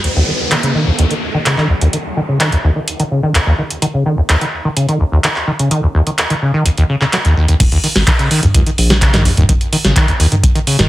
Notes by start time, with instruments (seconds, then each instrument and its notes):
0.04 acid bass D#2, closed hi-hat, downlifter
0.16 acid bass D#2
0.28 acid bass D#3
0.51 acid bass D#3, clap, closed hi-hat
0.63 acid bass C#3, closed hi-hat
0.75 acid bass D#3
0.87 acid bass D#2
0.99 acid bass D#2, closed hi-hat
1.11 acid bass D#3, closed hi-hat
1.34 acid bass D#3
1.46 acid bass C#3, clap, closed hi-hat
1.58 acid bass D#3, clap
1.69 acid bass D#2
1.81 acid bass D#2, closed hi-hat
1.93 acid bass D#3, closed hi-hat
2.17 acid bass D#3
2.29 acid bass C#3
2.40 acid bass D#3, clap, closed hi-hat
2.52 acid bass D#2, closed hi-hat
2.64 acid bass D#2
2.76 acid bass D#3
2.88 closed hi-hat
3.00 acid bass D#3, closed hi-hat
3.11 acid bass C#3
3.23 acid bass D#3
3.35 acid bass D#2, clap, closed hi-hat
3.47 acid bass D#2
3.59 acid bass D#3
3.70 closed hi-hat
3.82 acid bass D#3, closed hi-hat
3.94 acid bass C#3
4.06 acid bass D#3
4.18 acid bass D#2
4.29 acid bass D#2, clap, closed hi-hat
4.41 acid bass D#3, closed hi-hat
4.65 acid bass D#3
4.77 acid bass C#3, closed hi-hat
4.89 acid bass D#3, closed hi-hat
5.00 acid bass D#2
5.12 acid bass D#2
5.24 acid bass D#3, clap, closed hi-hat
5.36 clap
5.47 acid bass D#3
5.59 acid bass C#3, closed hi-hat
5.71 acid bass D#3, closed hi-hat
5.83 acid bass D#2
5.95 acid bass D#2
6.07 acid bass D#3, closed hi-hat
6.18 clap, closed hi-hat
6.30 acid bass D#3, closed hi-hat
6.42 acid bass C#3
6.54 acid bass D#3
6.66 acid bass D#2, closed hi-hat
6.78 acid bass D#2, closed hi-hat
6.89 acid bass C#3
7.01 acid bass C#3, clap
7.13 acid bass F#3, clap, closed hi-hat
7.25 acid bass D#2, closed hi-hat
7.37 acid bass D#2
7.48 acid bass D#2, closed hi-hat
7.60 sub bass D#1, acid bass D#2, kick, closed hi-hat, crash
7.72 acid bass D#2, closed hi-hat
7.84 acid bass D#3, open hi-hat
7.96 sub bass G#1, snare, closed hi-hat
8.07 acid bass D#3, kick, clap, closed hi-hat
8.19 acid bass C#3, closed hi-hat
8.31 acid bass D#3, open hi-hat
8.43 acid bass D#2, closed hi-hat, mid tom
8.54 sub bass C#2, acid bass D#2, kick, closed hi-hat
8.66 acid bass D#3, closed hi-hat
8.78 sub bass A#1, open hi-hat
8.90 acid bass D#3, snare, closed hi-hat
9.02 acid bass C#3, kick, clap, closed hi-hat
9.14 acid bass D#3, snare, clap, closed hi-hat, mid tom
9.25 acid bass D#2, open hi-hat
9.37 sub bass D#1, acid bass D#2, closed hi-hat, mid tom
9.49 sub bass D#1, acid bass D#3, kick, closed hi-hat
9.61 closed hi-hat
9.73 acid bass D#3, open hi-hat
9.85 sub bass G#1, acid bass C#3, snare, closed hi-hat
9.96 acid bass D#3, kick, clap, closed hi-hat
10.08 acid bass D#2, closed hi-hat
10.20 acid bass D#2, open hi-hat
10.32 acid bass D#3, closed hi-hat, mid tom
10.43 kick, closed hi-hat
10.55 acid bass D#3, closed hi-hat
10.67 acid bass C#3, open hi-hat
10.79 sub bass D#1, acid bass D#3, snare, closed hi-hat, mid tom